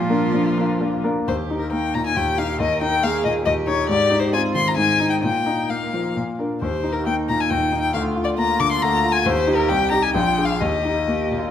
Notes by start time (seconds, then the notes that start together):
Already playing: A#2 F3 F4
0.09 A#3 D4 A#4
0.33 A#3 D4 A#4
0.57 A#3 D4 A#4
0.80 A#3 D4 A#4
1.04 A#3 D4 A#4
1.27 D#2 G4 C5
1.50 D#4
1.59 A#4
1.71 A#3 D#4 G5
1.94 A#2 A#5
2.07 G#5
2.15 D#2 G4 G5
2.38 D#4 F5
2.59 D#2 A#4 D#5
2.81 D#4 G5
3.03 A#3 G#4 F5
3.25 A#2 D#5
3.45 D#2 G4 D#5
3.67 D#4 C#5
3.89 G#2 D5
4.10 D#4
4.20 C5
4.33 C4 F4 G#5
4.55 D#3 C6
4.67 A#5
4.77 G#2 D#4 G#5
5.00 D#4
5.10 G5
5.23 A#2 A#3 G5
5.46 D#4
5.69 A#3 F5
5.93 F3
6.16 A#2
6.39 D4 A#4
6.62 D#2 G4 C5
6.83 D#4
6.92 A#4
7.06 A#3 D#4 G5
7.29 A#2 A#5
7.40 G#5
7.50 D#2 G5
7.72 D#4
7.81 G5
7.94 D2 F4 F5
8.16 F4
8.24 D5
8.38 A#3 A#5
8.60 D3 D6
8.72 C6
8.82 D2 A#5
9.04 F4
9.12 G#5
9.25 D#2 G4 C5
9.47 D#4 G4
9.55 A#4
9.69 C2 G5
9.91 D#4 G4 A#5
10.03 G#5
10.14 A#1 F4 G5
10.38 D4 G#4
10.45 F5
10.61 D#2 G4 D#5
10.85 D#4
11.08 A#3 G4
11.31 A#2
11.39 F4